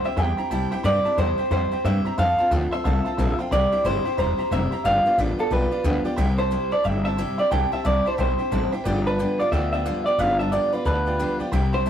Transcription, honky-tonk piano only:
0.04 C5 E5 G5
0.16 C5 E5 G5
0.37 C5 E5 A#5
0.50 C5 E5 A5
0.71 C5 E5 G5
0.83 C5 E5 G5
1.04 C5 E5 A5
1.16 C5 E5 G5
1.38 C5 E5 G5
1.51 C5 E5 G5
1.72 C5 E5 G5
1.84 C5 E5 G5
2.05 C5 E5 A#5
2.18 C5 F5 A5
2.38 C5 F5 A5
2.51 C5 F5 G5
2.71 C5 F5 C6
2.84 C5 F5 A5
3.05 C5 F5 A5
3.17 C5 F5 A5
3.39 C5 F5 G5
3.51 C5 E5 G5
3.71 C5 E5 G5
3.84 C5 E5 G5
4.04 C5 E5 G5
4.17 C5 E5 A#5
4.37 C5 E5 A#5
4.50 C5 E5 A#5
4.71 C5 E5 A#5
4.84 B4 D5 G5
5.05 B4 D5 F5
5.18 B4 D5 E5
5.38 B4 D5 F5
5.50 B4 D5 G5
5.71 B4 D5 F5
5.84 B4 D5 G5
6.04 B4 D5 G5
6.16 C5 E5 G5
6.38 C5 E5 A5
6.51 C5 E5 G5
6.71 C5 E5 A5
6.84 C5 E5 G5
7.04 C5 E5 A5
7.17 C5 E5 G5
7.38 C5 E5 G5
7.51 C5 E5 A5
7.72 C5 E5 A5
7.84 C5 E5 A5
8.05 C5 E5 A5
8.17 C5 E5 G5
8.38 C5 E5 G5
8.50 C5 E5 A5
8.71 C5 E5 G5
8.84 B4 D5 G5
9.05 B4 D5 A5
9.18 B4 D5 G5
9.38 B4 D5 F5
9.51 B4 D5 G5
9.71 B4 D5 G5
9.84 B4 D5 F5
10.05 B4 D5 G5
10.18 B4 D5 E5
10.39 B4 D5 A5
10.51 B4 D5 G5
10.72 B4 D5 F5
10.85 B4 D5 A5
11.06 B4 D5 G5
11.18 B4 D5 G5
11.39 B4 D5 G5
11.52 C5 E5 G5
11.72 C5 E5 G5
11.85 C5 E5

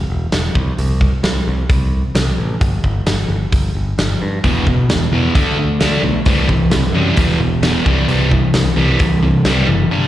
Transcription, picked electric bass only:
0.10 E1
0.32 E1
0.56 C2
0.79 C2
1.23 C2
1.48 C2
1.69 C2
2.15 C2
2.38 A1
2.61 G1
2.84 G1
3.06 G1
3.28 G1
3.53 G1
3.75 G1
3.98 G1
4.22 G2
4.44 E1
4.89 E1
5.12 E2
5.35 D2
5.80 D2
6.03 B1
6.26 C2
6.49 C2
6.70 C2
6.92 F#2
7.17 E1
7.38 E1
7.61 E1
7.86 C2
8.08 C2
8.54 C2
8.77 C2
9.00 C2
9.45 C2
9.67 F#1

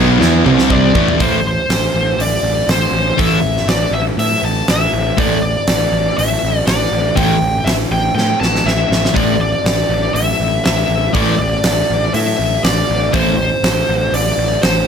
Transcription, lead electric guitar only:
0.72 D5
1.21 C5
1.47 C5
2.21 D5
2.71 C5
3.19 E5
3.69 D5
3.93 E5
4.19 E5
4.45 A5
4.70 E5
5.19 D5
5.43 D5
6.18 E5
6.67 D5
7.16 G5
7.64 E5
7.92 G5
8.15 G5
8.40 A5
8.66 E5
9.16 D5
9.41 D5
10.15 E5
10.65 E5
11.14 D5
11.39 D5
12.15 E5
12.64 D5
13.13 C5
13.38 C5
14.14 D5
14.62 C5

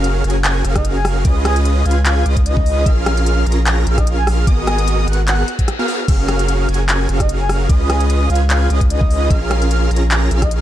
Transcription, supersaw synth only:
Already playing: C#4 F#4 G#4 A#4 F5
0.24 C#4 F#4 G#4 A#4 G#5
0.65 C#4 F#4 G#4 A#4 F5
1.25 C#4 F4 G#4 B4 D#5
1.85 C#4 F4 G#4 B4 G#5
2.26 C#4 F4 G#4 B4 D#5
2.86 C#4 F4 G#4 A#4 F5
3.47 C#4 F4 G#4 A#4 A#5
3.87 C#4 F4 G#4 A#4 F5
4.47 B3 F#4 G#4 A#4 D#5
5.08 B3 F#4 G#4 A#4 F#5
5.79 B3 F#4 G#4 A#4 F5
5.88 B3 F#4 G#4 A#4 F5
6.08 C#4 F#4 G#4 A#4 F5
6.69 C#4 F#4 G#4 A#4 G#5
7.09 C#4 F#4 G#4 A#4 F5
7.69 C#4 F4 G#4 B4 D#5
8.30 C#4 F4 G#4 B4 G#5
8.70 C#4 F4 G#4 B4 D#5
9.30 C#4 F4 G#4 A#4 F5
9.91 C#4 F4 G#4 A#4 A#5
10.31 C#4 F4 G#4 A#4 F5

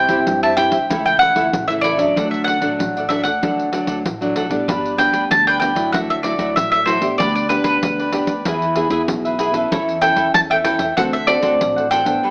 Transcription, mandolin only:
Already playing: G5
0.43 A5
0.57 G5
1.06 G5
1.19 F#5
1.68 E5
1.81 D5
2.31 E5
2.44 F#5
3.09 E5
3.24 F#5
4.98 G5
5.31 A5
5.47 G5
5.60 G5
5.93 F#5
6.10 E5
6.23 D5
6.56 E5
6.72 E5
6.86 C5
7.18 D5
7.35 D5
7.49 B4
7.64 B4
10.02 G5
10.34 A5
10.51 G5
10.64 G5
10.97 F#5
11.13 E5
11.27 D5
11.91 G5

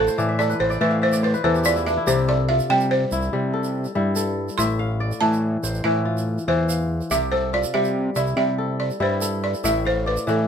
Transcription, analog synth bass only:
0.19 A2
0.60 A1
0.81 A2
1.44 E2
2.07 C2
2.70 C3
3.12 C2
3.33 C3
3.96 G2
4.58 A1
5.21 A2
5.63 A1
5.84 A2
6.48 E2
7.11 C2
7.74 C3
8.16 C2
8.36 C3
9.00 G2
9.64 A1
10.27 A2

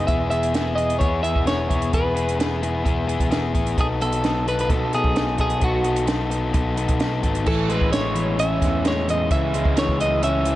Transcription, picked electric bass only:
0.08 E1
1.01 E2
1.35 E1
1.70 E1
1.93 E1
2.85 E1
3.20 E1
3.54 A1
3.77 B1
4.70 B2
5.04 B1
5.39 B1
5.62 B1
6.54 B1
6.89 B1
7.23 G#1
7.47 A1
7.81 A1
8.62 E2
9.31 C#2
9.65 C#2
9.88 C#2

